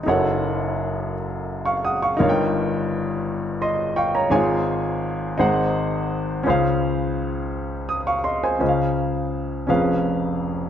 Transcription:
\new Staff \with { instrumentName = "Grand piano" } { \time 6/8 \key des \major \tempo 4. = 56 << { r2 r16 <f'' des'''>16 <ges'' ees'''>16 <f'' des'''>16~ | <f'' des'''>16 r4. r16 <ees'' c'''>8 <f'' g'' des'''>16 <des'' bes''>16~ | <des'' bes''>16 r2 r8. | r2 ees'''16 <f'' des'''>16 <ees'' c'''>16 <c'' aes''>16~ |
<c'' aes''>16 r2 r8. | } \\ { <ges,, ges, ees' aes' a' des'' ges''>2. | <g,, g, ees' bes' des'' f'' g''>2. | <aes,, aes, ees' f' aes' des'' aes''>4. <aes,, aes, ees' aes' c'' ges''>4. | <des, des des' aes' c'' f''>2. |
<des, des des' aes' c'' ees'' f''>4. <f,, f, des' aes' ces'' f''>4. | } >> }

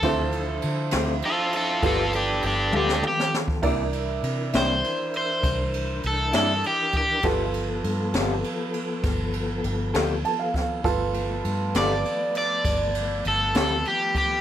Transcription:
<<
  \new Staff \with { instrumentName = "Grand piano" } { \time 12/8 \key g \mixolydian \tempo 4. = 67 << { r1. | r1. | r1 r4 a''16 f''16 f''8 | r1. | } \\ { <e' f' c''>2. <f' a' b'>2. | <e' bes' d''>1. | <f' a' b'>1. | <f' a' b'>1. | } >> }
  \new Staff \with { instrumentName = "Overdriven electric guitar" } { \time 12/8 \key g \mixolydian a'4. r8 <f' a'>8 <f' a'>8 <f' a'>8 <d' g'>8 <d' g'>8 <d' g'>8 g'8 r8 | r4. c''4 c''4. a'8 a'8 g'8 g'8 | r1. | r4. d''4 d''4. a'8 a'8 g'8 g'8 | }
  \new Staff \with { instrumentName = "Clean electric guitar" } { \time 12/8 \key g \mixolydian <d a c' f'>8 r4 <d a c' f'>8 r4 <g b f' a'>8 r4 <g b f' a'>8 r4 | <c bes d' e'>8 r4 <c bes d' e'>8 r2 r8 <c bes d' e'>8 r4 | <g b f' a'>8 r4 <g b f' a'>8 r2 r8 <g b f' a'>8 r4 | r4. <g b f' a'>8 r2 r8 <g b f' a'>8 r4 | }
  \new Staff \with { instrumentName = "Tonewheel organ" } { \time 12/8 \key g \mixolydian <f d' c''>2. <f b a'>2. | <e d' bes'>1. | <f b a'>1. | <f a b>1. | }
  \new Staff \with { instrumentName = "Fingered electric bass" } { \clef bass \time 12/8 \key g \mixolydian d,4 d8 d,8 r4 g,,4 g,,8 d,8 r4 | c,4 c8 c,8 r4 c,4 c,8 g,8 r4 | g,,4 g,8 g,,8 r4 g,,4 g,,8 d,8 r4 | g,,4 g,8 g,,8 r4 g,,4 g,,8 d,8 r4 | }
  \new DrumStaff \with { instrumentName = "Drums" } \drummode { \time 12/8 <bd cymr>8 cymr8 cymr8 <cymr sn>8 cymr8 cymr8 <bd cymr>8 cymr8 cymr8 tommh16 sn16 toml16 sn16 sn16 bd16 | <bd cymr>8 cymr8 cymr8 <cymr sn>8 cymr8 cymr8 <bd cymr>8 cymr8 cymr8 <cymr sn>8 cymr8 <bd cymr>8 | <bd cymr>8 cymr8 cymr8 <cymr sn>8 cymr8 cymr8 <bd cymr>8 cymr8 cymr8 <cymr sn>8 cymr8 <bd cymr sn>8 | <bd cymr>8 cymr8 cymr8 <cymr sn>8 cymr8 cymr8 <bd cymr>8 cymr8 cymr8 <cymr sn>8 cymr8 <bd cymr>8 | }
>>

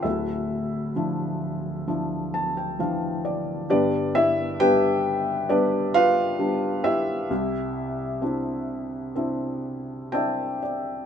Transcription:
<<
  \new Staff \with { instrumentName = "Felt piano" } { \time 4/4 \key c \mixolydian \tempo 4 = 66 << { r2 r8 a''16 g''16 f''8 d''8 | r1 | r2. a''8 d''8 | } \\ { <e' a' e''>4 r2. | <d' g' b' d''>8 <e' e''>8 <g' b' g''>4 <d' g' b' d''>8 <f' b' f''>4 <e' g' e''>8~ | <e' g' e''>2. <d'' e'' g''>4 | } >> }
  \new Staff \with { instrumentName = "Felt piano" } { \time 4/4 \key c \mixolydian <d,, d,>4 <f d' e'>4 <f d' e'>4 <e f d'>4 | <g,, g,>4 <g b d'>4 <g b>4 <g b d'>4 | <c, c>4 <c' d' e'>4 <c' d' e'>4 <c' d' e'>4 | }
>>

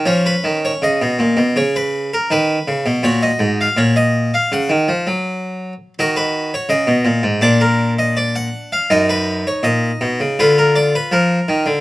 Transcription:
<<
  \new Staff \with { instrumentName = "Harpsichord" } { \time 4/4 \key fis \major \tempo 4 = 81 << { cis''16 b'8 cis''16 dis''4 cis''16 b'8 ais'16 b'4 | cis''16 dis''8 eis''16 cis''16 dis''8 eis''16 fis''8 r4. | \key ees \minor ees''16 ces''8 des''16 ees''4 d''16 bes'8 ees''16 d''16 ges''8 f''16 | ees''16 ces''8 des''16 ees''4 ces''16 bes'16 d''16 ces''16 bes'4 | } \\ { cis'1 | fis'1 | ges'2 d'2 | ees'2 f'2 | } >> }
  \new Staff \with { instrumentName = "Harpsichord" } { \clef bass \time 4/4 \key fis \major eis8 dis8 cis16 b,16 ais,16 b,16 cis4 dis8 cis16 b,16 | ais,8 gis,8 ais,4 cis16 dis16 eis16 fis4~ fis16 | \key ees \minor ees4 des16 ces16 bes,16 aes,16 bes,2 | ges,4 bes,8 ces16 des16 d4 f8 ees16 d16 | }
>>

